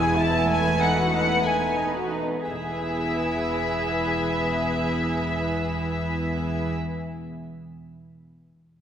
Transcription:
Already playing: E1 E2 G#3 E4 B4 G#5
0.04 G#4
0.19 E4 A5
0.35 B3
0.50 A3 B4 G#5
0.65 B3
0.81 D#4 F#5
0.97 F#4
1.13 D#4 F#5
1.28 B3
1.44 A3 D#4 G#5
1.60 B3
1.77 D#4
1.94 F#4
2.11 D#4
2.29 B3
2.47 E1 E2 B3 E4 G#4 B4 E5

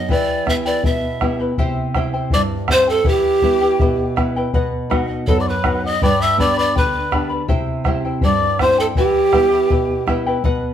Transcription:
Already playing: D#5 F#5
0.08 E3 E4 G4 B4 D5 E5 G5, bombo low
0.46 B3 E4 G4 B4 E5 G5, bombo rim, bombo low
0.65 E4 B4 D5 G5
0.83 B2 E4 B4 E5 G5, bombo low
1.21 B3 E4 G4 B4 E5 G5, bombo rim, bombo low
1.40 E4 B4 G5
1.58 C3 E4 G4 C5 E5 G5, bombo low
1.94 C4 E4 G4 C5 E5 G5, bombo rim, bombo low
2.13 E4 C5 G5
2.30 G2 E4 C5 D5 E5 G5 D6, bombo low
2.68 C4 E4 G4 C5 E5 G5, bombo rim, bombo low
2.73 C6
2.87 E4 A4 C5 G5 A5
3.04 E3 E4 G4 B4 E5 G5, bombo low
3.11 G5
3.42 B3 E4 G4 B4 E5 G5, bombo low
3.61 E4 B4 G5
3.79 B2 E4 B4 E5 G5, bombo low
4.16 B3 E4 G4 B4 E5 G5, bombo rim, bombo low
4.36 E4 B4 G5
4.53 B2 B4 D#5 F#5, bombo low
4.90 B3 D#4 F#4 B4 D#5 F#5, bombo rim, bombo low
5.09 D#5 F#5
5.27 F#2 A4 B4 D#5 F#5 A5, bombo low
5.40 D5 D6
5.48 B4 B5
5.64 B3 D#4 F#4 B4 D#5 F#5, bombo rim, bombo low
5.84 D#5 F#5 D#6
6.02 G2 G4 B4 D5 G5 B5 D6, bombo low
6.21 E5 E6
6.37 B3 D4 G4 B4 D5 G5 B5 D6, bombo low
6.57 B4 D5 B5 D6
6.75 D3 B4 D5 G5 B5, bombo low
7.11 B3 D4 G4 B4 D5 G5 B5, bombo rim, bombo low
7.30 B4 D5 B5
7.48 C3 E4 G4 C5 E5 G5, bombo low
7.84 C4 E4 G4 C5 E5 G5, bombo rim, bombo low
8.05 E4 C5 G5
8.21 G2 E4 C5 D5 E5 G5 D6, bombo low
8.59 C4 E4 G4 C5 E5 G5 C6, bombo rim, bombo low
8.78 E4 A4 C5 G5 A5
8.95 E3 E4 G4 B4 E5 G5, bombo low
9.33 B3 E4 G4 B4 E5 G5, bombo rim, bombo low
9.51 E4 B4 G5
9.70 B2 E4 B4 E5 G5, bombo low
10.06 B3 E4 G4 B4 E5 G5, bombo rim, bombo low
10.26 E4 B4 G5
10.44 B2 B4 D#5 F#5, bombo low

